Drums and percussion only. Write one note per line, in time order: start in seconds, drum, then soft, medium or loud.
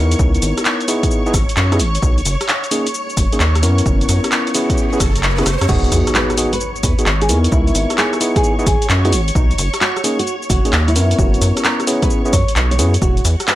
0.12 closed hi-hat medium
0.12 cabasa soft
0.19 kick loud
0.19 cabasa soft
0.35 closed hi-hat soft
0.35 cabasa soft
0.42 open hi-hat loud
0.42 cabasa medium
0.58 cross-stick medium
0.58 closed hi-hat medium
0.58 cabasa soft
0.65 clap loud
0.65 cabasa soft
0.81 closed hi-hat soft
0.81 cabasa soft
0.88 open hi-hat medium
0.88 cabasa medium
1.03 kick loud
1.03 closed hi-hat medium
1.03 cabasa soft
1.11 cabasa soft
1.26 cabasa soft
1.34 kick loud
1.34 cross-stick medium
1.34 open hi-hat loud
1.34 cabasa medium
1.49 closed hi-hat medium
1.49 cabasa soft
1.57 clap loud
1.57 cabasa soft
1.72 cross-stick medium
1.72 closed hi-hat medium
1.72 cabasa soft
1.80 open hi-hat medium
1.80 cabasa medium
1.95 closed hi-hat medium
1.95 cabasa soft
2.03 kick loud
2.03 cabasa soft
2.18 closed hi-hat soft
2.18 cabasa soft
2.25 open hi-hat loud
2.25 cabasa medium
2.41 cross-stick medium
2.41 closed hi-hat medium
2.41 cabasa soft
2.49 clap loud
2.49 cabasa soft
2.64 closed hi-hat soft
2.64 cabasa soft
2.71 open hi-hat loud
2.71 cabasa medium
2.87 closed hi-hat medium
2.87 cabasa soft
2.94 cabasa soft
3.10 cabasa soft
3.17 kick loud
3.17 open hi-hat loud
3.17 cabasa medium
3.33 closed hi-hat medium
3.33 cabasa soft
3.40 clap loud
3.40 cabasa soft
3.55 cross-stick medium
3.55 closed hi-hat medium
3.55 cabasa soft
3.63 open hi-hat medium
3.63 cabasa medium
3.78 closed hi-hat medium
3.78 cabasa soft
3.86 kick loud
3.86 cabasa soft
4.01 closed hi-hat soft
4.01 cabasa soft
4.09 open hi-hat loud
4.09 cabasa medium
4.24 cross-stick medium
4.24 closed hi-hat medium
4.24 cabasa soft
4.32 clap loud
4.32 cabasa soft
4.47 closed hi-hat soft
4.47 cabasa soft
4.55 open hi-hat loud
4.55 cabasa medium
4.70 kick loud
4.70 closed hi-hat medium
4.70 cabasa soft
4.77 cabasa soft
4.93 cabasa soft
5.00 kick loud
5.00 cross-stick medium
5.00 open hi-hat loud
5.00 cabasa medium
5.16 closed hi-hat medium
5.16 cabasa soft
5.23 clap loud
5.23 cabasa soft
5.38 cross-stick medium
5.38 closed hi-hat medium
5.38 cabasa soft
5.46 cross-stick medium
5.46 open hi-hat medium
5.46 cabasa medium
5.61 cross-stick medium
5.61 closed hi-hat medium
5.61 cabasa soft
5.69 kick loud
5.69 crash loud
5.69 cabasa soft
5.84 closed hi-hat soft
5.84 cabasa soft
5.92 open hi-hat loud
5.92 cabasa medium
6.07 cross-stick medium
6.07 closed hi-hat medium
6.07 cabasa soft
6.15 clap loud
6.15 cabasa soft
6.30 cross-stick medium
6.30 closed hi-hat soft
6.30 cabasa soft
6.38 open hi-hat loud
6.38 cabasa medium
6.53 closed hi-hat medium
6.53 cabasa soft
6.60 cabasa soft
6.76 cabasa soft
6.83 kick loud
6.83 open hi-hat loud
6.83 cabasa medium
6.99 closed hi-hat medium
6.99 cabasa soft
7.06 clap loud
7.06 cabasa soft
7.21 closed hi-hat medium
7.21 cabasa soft
7.29 open hi-hat medium
7.29 cabasa medium
7.44 closed hi-hat medium
7.44 cabasa soft
7.52 kick loud
7.52 cabasa soft
7.67 closed hi-hat soft
7.67 cabasa soft
7.75 open hi-hat loud
7.75 cabasa medium
7.90 cross-stick medium
7.90 closed hi-hat medium
7.90 cabasa soft
7.98 clap loud
7.98 cabasa soft
8.13 cross-stick medium
8.13 closed hi-hat soft
8.13 cabasa soft
8.21 open hi-hat medium
8.21 cabasa medium
8.36 kick loud
8.36 closed hi-hat medium
8.36 cabasa soft
8.44 cabasa soft
8.59 cabasa soft
8.67 kick loud
8.67 open hi-hat loud
8.67 cabasa medium
8.82 closed hi-hat medium
8.82 cabasa soft
8.90 clap loud
8.90 cabasa soft
9.05 closed hi-hat medium
9.05 cabasa soft
9.13 open hi-hat medium
9.13 cabasa medium
9.28 closed hi-hat medium
9.28 cabasa soft
9.35 kick loud
9.35 cabasa soft
9.51 closed hi-hat soft
9.51 cabasa soft
9.58 open hi-hat loud
9.58 cabasa medium
9.74 cross-stick medium
9.74 closed hi-hat medium
9.74 cabasa soft
9.81 clap loud
9.81 cabasa soft
9.97 cross-stick medium
9.97 closed hi-hat soft
9.97 cabasa soft
10.04 open hi-hat medium
10.04 cabasa medium
10.19 closed hi-hat medium
10.19 cabasa soft
10.27 cabasa soft
10.42 cabasa soft
10.50 kick loud
10.50 open hi-hat loud
10.50 cabasa medium
10.65 closed hi-hat medium
10.65 cabasa soft
10.73 clap loud
10.73 cabasa soft
10.88 closed hi-hat medium
10.88 cabasa soft
10.96 open hi-hat medium
10.96 cabasa medium
11.11 closed hi-hat medium
11.11 cabasa soft
11.19 kick loud
11.19 cabasa soft
11.34 closed hi-hat soft
11.34 cabasa soft
11.42 open hi-hat loud
11.42 cabasa medium
11.57 cross-stick medium
11.57 closed hi-hat medium
11.57 cabasa soft
11.64 clap loud
11.64 cabasa soft
11.80 cross-stick medium
11.80 closed hi-hat soft
11.80 cabasa soft
11.87 open hi-hat medium
11.87 cabasa medium
12.03 kick loud
12.03 closed hi-hat medium
12.03 cabasa soft
12.10 cabasa soft
12.25 cabasa soft
12.33 kick loud
12.33 open hi-hat loud
12.33 cabasa medium
12.48 closed hi-hat medium
12.48 cabasa soft
12.56 clap loud
12.56 cabasa soft
12.71 closed hi-hat medium
12.71 cabasa soft
12.79 open hi-hat medium
12.79 cabasa medium
12.94 closed hi-hat medium
12.94 cabasa soft
13.02 kick loud
13.02 cabasa soft
13.17 closed hi-hat soft
13.17 cabasa soft
13.25 open hi-hat loud
13.25 cabasa medium
13.40 cross-stick medium
13.40 closed hi-hat medium
13.40 cabasa soft
13.48 clap loud
13.48 cabasa soft